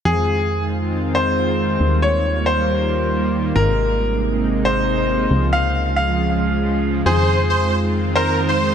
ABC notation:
X:1
M:4/4
L:1/16
Q:1/4=137
K:Fm
V:1 name="Grand piano"
A6 z4 c6- | c2 d4 c8- c2 | B6 z4 c6- | c2 f4 f8- f2 |
A6 z4 c6 |]
V:2 name="Supersaw synth"
z16 | z16 | z16 | z16 |
c3 z c2 z4 B2 z c2 z |]
V:3 name="Analog synth pad" clef=bass
[E,A,CF]2 z3 [E,A,CF]2 [E,A,CF]2 [E,A,CF]2 [E,A,CF] [E,A,CF]2 [E,A,CF]2 | [E,G,B,F]2 z3 [E,G,B,F]2 [E,G,B,F]2 [E,G,B,F]2 [E,G,B,F] [E,G,B,F]2 [E,G,B,F]2 | [C,A,B,E]2 z3 [C,A,B,E]2 [C,A,B,E]2 [C,A,B,E]2 [C,A,B,E] [C,A,B,E]2 [C,A,B,E]2 | [D,F,A,F]2 z3 [D,F,A,F]2 [D,F,A,F]2 [D,F,A,F]2 [D,F,A,F] [D,F,A,F]2 [D,F,A,F]2 |
[E,A,CF]2 z3 [E,A,CF]2 [E,A,CF]2 [E,A,CF]2 [E,A,CF] [E,A,CF]2 [E,A,CF]2 |]
V:4 name="Analog synth bass" clef=bass
F,,16 | E,,16 | A,,,16 | D,,16 |
F,,16 |]